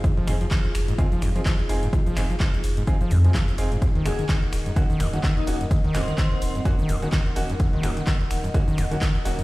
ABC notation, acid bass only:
X:1
M:4/4
L:1/16
Q:"Swing 16ths" 1/4=127
K:Ebdor
V:1 name="Acid bass" clef=bass
F,, F, E,, F, F, z2 A,, F,, F, E,, F, F, z2 A,, | F,, F, E,, F, F, z2 A,, F,, F, E,, F, F, z2 A,, | E,, E, D,, E, E, z2 G,, E,, E, D,, E, E, z2 G,, | E,, E, D,, E, E, z2 G,, E,, E, D,, E, E, z2 G,, |
E,, E, D,, E, E, z2 G,, E,, E, D,, E, E, z2 G,, |]